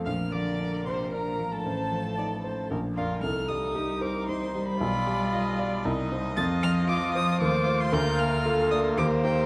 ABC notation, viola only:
X:1
M:3/4
L:1/8
Q:1/4=114
K:Bb
V:1 name="Viola"
B6 | c2 d c B B | A2 G B c2 | d2 e d e2- |
e4 c2 | B2 A2 G2 |]